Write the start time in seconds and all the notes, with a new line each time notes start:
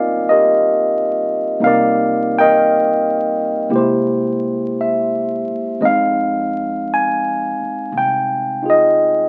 Already playing: G1 G3 A#3 C4 D#4 F4 A#4 D5 D#5 F5 G#5
0.29 G4 A#4 D#5
1.60 C2 G3 A#3 C4 D#4
1.64 A#4 D5 F5
2.38 A#4 D#5 G5
3.69 C2 G#3 A#3 E4 G4
3.76 E4 G4 C5
4.81 E5
5.48 muted upright bass stroke
5.80 F2 G#3 C4 D#4 D#5
5.85 F5
6.94 G#5
7.59 muted upright bass stroke
7.92 C2
7.98 G5
8.63 D#4 F4 G#4
8.70 D#5